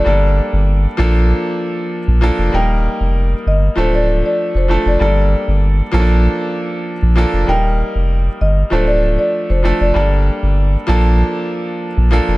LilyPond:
<<
  \new Staff \with { instrumentName = "Marimba" } { \time 4/4 \key bes \major \tempo 4 = 97 d''2 r2 | g''4. ees''8 c''16 d''8 d''8 c''8 d''16 | d''2 r2 | g''4. ees''8 c''16 d''8 d''8 c''8 d''16 |
d''2 r2 | }
  \new Staff \with { instrumentName = "Grand piano" } { \time 4/4 \key bes \major <g bes d' a'>4. <f bes d' a'>4. r8 <f bes d' a'>8 | <g bes ees' bes'>4. r8 <f a d' a'>4 r8 <f a d' a'>8 | <g bes d' a'>4. <f bes des' d' a'>4. r8 <f bes d' a'>8 | <g bes ees' bes'>4. r8 <f a d' a'>4 r8 <f a d' a'>8 |
<g bes d' a'>4. <f bes d' a'>4. r8 <f bes d' a'>8 | }
  \new Staff \with { instrumentName = "Sub bass" } { \clef bass \time 4/4 \key bes \major g,,8. g,,8. bes,,8. r4 bes,,8 f,,16 | ees,,8. f,,8. g,,8 d,,4 r16 f,,8 f,,16 | g,,8. g,,8. bes,,8. r4 bes,,8 f,,16 | ees,,8. f,,8. g,,8 d,,4 r16 f,,8 f,,16 |
g,,8. g,,8. bes,,8. r4 bes,,8 f,,16 | }
>>